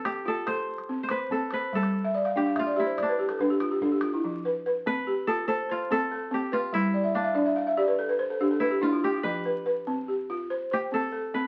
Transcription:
Already playing: balafon C4 B4, kora A4 B4
0.05 kora G4, calabash thump, calabash click
0.26 balafon F4, kora A4
0.47 balafon A4, kora C5, calabash thump, calabash click
0.78 calabash click
0.89 balafon C4
1.03 kora C5
1.09 kora B4, balafon C5, calabash click
1.30 balafon C4, kora A4, calabash thump
1.51 kora B4, balafon C5, calabash click
1.73 balafon G3, kora A4, calabash thump
1.83 calabash click
2.04 balafon E5
2.15 balafon D5
2.25 balafon F5, calabash click
2.36 balafon D4 G5, kora G4
2.46 balafon F5
2.56 kora F4, balafon E5, calabash thump, calabash click
2.67 balafon D5
2.76 kora E4, balafon G4 E5
2.86 balafon C5
2.97 balafon D5, calabash thump, calabash click
3.03 kora D4
3.09 balafon B4
3.19 balafon G4
3.29 balafon A4, calabash click
3.39 balafon D4 B4, calabash thump, calabash click
3.50 balafon G4
3.60 balafon F4, calabash click
3.71 balafon G4
3.81 balafon D4 A4, calabash thump
3.92 balafon G4
4.01 balafon F4, calabash click
4.14 balafon E4
4.24 balafon F3
4.45 balafon B4
4.66 balafon B4
4.86 balafon C4, kora B4
5.07 balafon G4
5.27 balafon F4, kora A4
5.48 kora A4, balafon C5
5.70 kora F4, balafon C5
5.91 balafon C4, kora A4
6.11 balafon A4
6.31 balafon C4, kora G4
6.52 kora F4, balafon B4
6.73 balafon G3, kora E4
6.94 balafon D5
7.04 balafon E5
7.14 kora D4, balafon F5
7.24 balafon E5
7.35 balafon D4 D5
7.46 balafon E5
7.56 balafon F5
7.67 balafon E5
7.77 balafon G4 D5
7.88 balafon B4
7.99 balafon A4
8.09 balafon B4
8.19 balafon C5
8.30 balafon A4
8.41 balafon D4 G4
8.51 balafon A4
8.60 kora E4, balafon B4
8.71 balafon G4
8.81 balafon D4 E4, kora F4
8.92 balafon F4
9.03 balafon G4, kora G4
9.13 balafon F4
9.23 balafon F3, kora B4
9.45 balafon B4
9.66 balafon B4
9.87 balafon C4
10.08 balafon G4
10.30 balafon F4
10.50 balafon C5
10.71 kora G4, balafon C5
10.92 balafon C4, kora A4
11.12 balafon A4
11.34 balafon C4, kora B4

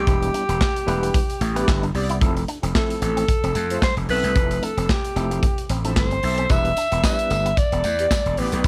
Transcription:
Already playing: alto saxophone G4
0.07 slap bass E1, tine electric piano G3 B3 D4 E4 G4, kick, closed hi-hat
0.22 muted clean electric guitar stroke, closed hi-hat
0.34 clean electric guitar D4, closed hi-hat
0.49 slap bass E1, clean electric guitar B3, closed hi-hat
0.61 muted clean electric guitar stroke, kick, snare, clap
0.76 closed hi-hat
0.87 slap bass E1, tine electric piano G3 B3 D4 E4 B4, clean electric guitar A3, closed hi-hat
1.03 clean electric guitar B3, closed hi-hat
1.14 muted clean electric guitar stroke, kick, closed hi-hat
1.30 closed hi-hat
1.41 slap bass A1, clean electric guitar A3, closed hi-hat
1.55 tine electric piano G3 B3 D4 E4 B4, analog polysynth B3 G4 D5, clean electric guitar B3, closed hi-hat
1.68 slap bass G1, kick, snare, clap
1.83 clean electric guitar D4, closed hi-hat
1.94 slap bass C2, analog polysynth B3 G4 D5, muted clean electric guitar stroke, open hi-hat
2.10 clean electric guitar E4, closed hi-hat
2.21 slap bass F1, tine electric piano F3 A3 C4 E4 A4, kick, closed hi-hat
2.37 muted clean electric guitar stroke, closed hi-hat
2.48 clean electric guitar D4, closed hi-hat
2.63 slap bass F1, clean electric guitar C4, tine electric piano E4 A4, closed hi-hat
2.74 tine electric piano F3 A3 C4 E4 A4, alto saxophone A4, muted clean electric guitar stroke, kick, snare, clap
2.90 closed hi-hat
3.02 slap bass A1, clean electric guitar A3, alto saxophone A4, closed hi-hat
3.17 clean electric guitar C4, closed hi-hat
3.28 muted clean electric guitar stroke, kick, closed hi-hat
3.43 slap bass F1, clean electric guitar C4, closed hi-hat
3.55 slap bass F2, clean electric guitar A3, closed hi-hat
3.70 analog polysynth A3 F4 C5, closed hi-hat
3.82 clean electric guitar G3, alto saxophone C5, kick, snare, clap
3.97 slap bass F1, closed hi-hat
4.08 slap bass B1, analog polysynth C4 A4 E5, alto saxophone B4, muted clean electric guitar stroke, open hi-hat
4.23 slap bass C2, clean electric guitar A3, closed hi-hat
4.35 slap bass F1, tine electric piano F3 A3 C4 E4 A4, kick, closed hi-hat
4.51 muted clean electric guitar stroke, closed hi-hat
4.63 clean electric guitar D4, alto saxophone A4, closed hi-hat
4.77 slap bass F1, clean electric guitar C4, closed hi-hat
4.89 alto saxophone G4, muted clean electric guitar stroke, kick, snare, clap
5.05 closed hi-hat
5.16 slap bass F1, tine electric piano F3 A3 C4 E4 A4, clean electric guitar C4, closed hi-hat
5.31 clean electric guitar A3, closed hi-hat
5.43 muted clean electric guitar stroke, kick, closed hi-hat
5.58 closed hi-hat
5.69 slap bass A1, clean electric guitar C4, closed hi-hat
5.85 tine electric piano F3 A3 C4 E4 A4, analog polysynth C4 A4 E5, clean electric guitar D4, closed hi-hat
5.96 slap bass G1, alto saxophone C5, kick, snare, clap
6.11 clean electric guitar C4, closed hi-hat
6.23 slap bass B1, analog polysynth C4 A4 E5, muted clean electric guitar stroke, open hi-hat
6.38 clean electric guitar C4, closed hi-hat
6.49 slap bass E1, tine electric piano G3 B3 D4 E4 B4, alto saxophone E5, kick, closed hi-hat, tambourine
6.65 muted clean electric guitar stroke, closed hi-hat
6.77 clean electric guitar D4, closed hi-hat, tambourine
6.91 slap bass E1, clean electric guitar B3, tine electric piano E4 B4, closed hi-hat
7.03 tine electric piano G3 B3 D4 E4 B4, alto saxophone E5, muted clean electric guitar stroke, kick, snare, clap, tambourine
7.19 closed hi-hat
7.30 slap bass G1, clean electric guitar A3, closed hi-hat, tambourine
7.46 clean electric guitar B3, closed hi-hat
7.57 alto saxophone D5, muted clean electric guitar stroke, kick, closed hi-hat, tambourine
7.72 slap bass E1, clean electric guitar B3, closed hi-hat
7.84 slap bass E2, clean electric guitar A3, closed hi-hat, tambourine
7.99 analog polysynth B3 G4 D5, closed hi-hat
8.11 clean electric guitar G3, kick, snare, clap, tambourine
8.26 slap bass E1, closed hi-hat
8.37 slap bass A1, analog polysynth B3 G4 D5, alto saxophone B4, muted clean electric guitar stroke, open hi-hat
8.52 slap bass B1, clean electric guitar A3, closed hi-hat
8.64 slap bass E1, tine electric piano G3 B3 D4, kick, closed hi-hat

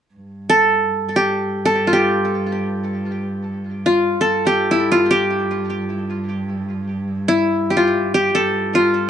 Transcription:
0.14 cello G2
0.50 qanun A4
1.16 qanun G4
1.65 qanun A4
1.87 qanun F4
1.93 qanun G4
3.86 qanun F4
4.21 qanun A4
4.28 cello G2
4.47 qanun G4
4.71 qanun E4
4.92 qanun F4
5.11 qanun G4
7.28 qanun E4
7.70 qanun G4
7.77 qanun F4
8.14 qanun G4
8.35 qanun A4
8.40 cello G2
8.75 qanun F4

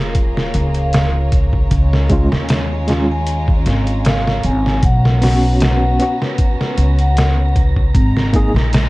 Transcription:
Already playing: violin section A#3 F4 G#4 C#5, synth texture A#5, sub drop
0.15 kick, closed hi-hat
0.37 snare
0.54 upright bass C#2, closed hi-hat
0.74 vibraphone F5, closed hi-hat
0.93 snare, closed hi-hat
1.32 kick, closed hi-hat
1.53 kick
1.71 upright bass C#2, violin section G#3 C#4 F4, kick, closed hi-hat
1.93 snare
2.09 tine electric piano G#3 C#4 F4, kick, closed hi-hat
2.31 upright bass D#2, snare
2.49 snare, closed hi-hat
2.87 tine electric piano G#3 C#4 F4, snare, closed hi-hat
3.12 vibraphone G#5
3.27 closed hi-hat
3.48 kick
3.66 upright bass G#1, snare, closed hi-hat
3.87 closed hi-hat
4.05 vibraphone F5, snare, closed hi-hat
4.27 snare
4.43 upright bass G#1, vibraphone G#5, closed hi-hat
4.66 snare
4.83 upright bass B1, violin section B3 C#4 F#4, vibraphone F#5, kick, closed hi-hat
5.05 snare
5.22 tine electric piano B3 C#4 F#4, snare, open hi-hat
5.60 vibraphone F#5, snare, closed hi-hat
5.99 tine electric piano B3 C#4 F#4, closed hi-hat
6.22 snare
6.38 kick, closed hi-hat
6.61 snare
6.78 upright bass C#2, closed hi-hat
6.99 vibraphone F#5, closed hi-hat
7.17 snare, closed hi-hat
7.56 kick, closed hi-hat
7.76 kick
7.95 upright bass G#1, violin section G#3 D#4 A#5, kick, closed hi-hat
8.17 snare
8.33 tine electric piano A#3 D#4 G#4, kick, closed hi-hat
8.54 upright bass A#1, snare
8.73 snare, closed hi-hat

